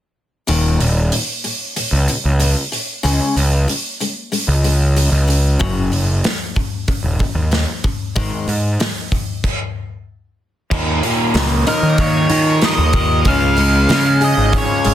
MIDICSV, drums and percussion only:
0, 0, Header, 1, 2, 480
1, 0, Start_track
1, 0, Key_signature, -6, "minor"
1, 0, Tempo, 638978
1, 360, Time_signature, 4, 2, 24, 8
1, 11224, End_track
2, 0, Start_track
2, 0, Title_t, "Drums"
2, 361, Note_on_c, 9, 46, 54
2, 436, Note_off_c, 9, 46, 0
2, 604, Note_on_c, 9, 46, 41
2, 680, Note_off_c, 9, 46, 0
2, 842, Note_on_c, 9, 46, 65
2, 917, Note_off_c, 9, 46, 0
2, 1083, Note_on_c, 9, 46, 43
2, 1158, Note_off_c, 9, 46, 0
2, 1327, Note_on_c, 9, 46, 57
2, 1402, Note_off_c, 9, 46, 0
2, 1563, Note_on_c, 9, 46, 42
2, 1638, Note_off_c, 9, 46, 0
2, 1806, Note_on_c, 9, 46, 58
2, 1881, Note_off_c, 9, 46, 0
2, 2052, Note_on_c, 9, 46, 44
2, 2127, Note_off_c, 9, 46, 0
2, 2294, Note_on_c, 9, 46, 59
2, 2370, Note_off_c, 9, 46, 0
2, 2534, Note_on_c, 9, 46, 42
2, 2609, Note_off_c, 9, 46, 0
2, 2775, Note_on_c, 9, 46, 57
2, 2850, Note_off_c, 9, 46, 0
2, 3013, Note_on_c, 9, 46, 41
2, 3088, Note_off_c, 9, 46, 0
2, 3255, Note_on_c, 9, 46, 51
2, 3330, Note_off_c, 9, 46, 0
2, 3492, Note_on_c, 9, 46, 39
2, 3567, Note_off_c, 9, 46, 0
2, 3737, Note_on_c, 9, 46, 51
2, 3812, Note_off_c, 9, 46, 0
2, 3981, Note_on_c, 9, 46, 42
2, 4056, Note_off_c, 9, 46, 0
2, 4213, Note_on_c, 9, 36, 88
2, 4217, Note_on_c, 9, 46, 55
2, 4288, Note_off_c, 9, 36, 0
2, 4292, Note_off_c, 9, 46, 0
2, 4454, Note_on_c, 9, 46, 45
2, 4529, Note_off_c, 9, 46, 0
2, 4689, Note_on_c, 9, 46, 65
2, 4695, Note_on_c, 9, 38, 99
2, 4764, Note_off_c, 9, 46, 0
2, 4770, Note_off_c, 9, 38, 0
2, 4929, Note_on_c, 9, 46, 44
2, 4931, Note_on_c, 9, 36, 75
2, 5005, Note_off_c, 9, 46, 0
2, 5006, Note_off_c, 9, 36, 0
2, 5168, Note_on_c, 9, 46, 59
2, 5170, Note_on_c, 9, 36, 90
2, 5244, Note_off_c, 9, 46, 0
2, 5245, Note_off_c, 9, 36, 0
2, 5410, Note_on_c, 9, 36, 76
2, 5410, Note_on_c, 9, 46, 49
2, 5485, Note_off_c, 9, 36, 0
2, 5485, Note_off_c, 9, 46, 0
2, 5649, Note_on_c, 9, 46, 57
2, 5655, Note_on_c, 9, 38, 92
2, 5724, Note_off_c, 9, 46, 0
2, 5730, Note_off_c, 9, 38, 0
2, 5892, Note_on_c, 9, 36, 86
2, 5893, Note_on_c, 9, 46, 47
2, 5967, Note_off_c, 9, 36, 0
2, 5968, Note_off_c, 9, 46, 0
2, 6132, Note_on_c, 9, 46, 63
2, 6133, Note_on_c, 9, 36, 87
2, 6207, Note_off_c, 9, 46, 0
2, 6208, Note_off_c, 9, 36, 0
2, 6375, Note_on_c, 9, 46, 46
2, 6450, Note_off_c, 9, 46, 0
2, 6613, Note_on_c, 9, 46, 59
2, 6619, Note_on_c, 9, 38, 98
2, 6688, Note_off_c, 9, 46, 0
2, 6694, Note_off_c, 9, 38, 0
2, 6850, Note_on_c, 9, 36, 66
2, 6854, Note_on_c, 9, 46, 42
2, 6925, Note_off_c, 9, 36, 0
2, 6929, Note_off_c, 9, 46, 0
2, 7091, Note_on_c, 9, 36, 81
2, 7093, Note_on_c, 9, 49, 76
2, 7166, Note_off_c, 9, 36, 0
2, 7168, Note_off_c, 9, 49, 0
2, 8046, Note_on_c, 9, 49, 91
2, 8048, Note_on_c, 9, 36, 96
2, 8122, Note_off_c, 9, 49, 0
2, 8123, Note_off_c, 9, 36, 0
2, 8287, Note_on_c, 9, 46, 47
2, 8362, Note_off_c, 9, 46, 0
2, 8526, Note_on_c, 9, 46, 73
2, 8532, Note_on_c, 9, 38, 105
2, 8601, Note_off_c, 9, 46, 0
2, 8607, Note_off_c, 9, 38, 0
2, 8764, Note_on_c, 9, 46, 49
2, 8839, Note_off_c, 9, 46, 0
2, 9000, Note_on_c, 9, 46, 66
2, 9002, Note_on_c, 9, 36, 73
2, 9075, Note_off_c, 9, 46, 0
2, 9077, Note_off_c, 9, 36, 0
2, 9237, Note_on_c, 9, 46, 58
2, 9312, Note_off_c, 9, 46, 0
2, 9477, Note_on_c, 9, 46, 68
2, 9483, Note_on_c, 9, 38, 92
2, 9552, Note_off_c, 9, 46, 0
2, 9558, Note_off_c, 9, 38, 0
2, 9713, Note_on_c, 9, 46, 52
2, 9717, Note_on_c, 9, 36, 88
2, 9788, Note_off_c, 9, 46, 0
2, 9792, Note_off_c, 9, 36, 0
2, 9953, Note_on_c, 9, 46, 69
2, 9956, Note_on_c, 9, 36, 106
2, 10028, Note_off_c, 9, 46, 0
2, 10032, Note_off_c, 9, 36, 0
2, 10199, Note_on_c, 9, 46, 48
2, 10274, Note_off_c, 9, 46, 0
2, 10442, Note_on_c, 9, 46, 80
2, 10448, Note_on_c, 9, 38, 110
2, 10517, Note_off_c, 9, 46, 0
2, 10523, Note_off_c, 9, 38, 0
2, 10680, Note_on_c, 9, 46, 51
2, 10755, Note_off_c, 9, 46, 0
2, 10917, Note_on_c, 9, 36, 73
2, 10919, Note_on_c, 9, 46, 64
2, 10992, Note_off_c, 9, 36, 0
2, 10994, Note_off_c, 9, 46, 0
2, 11154, Note_on_c, 9, 46, 52
2, 11224, Note_off_c, 9, 46, 0
2, 11224, End_track
0, 0, End_of_file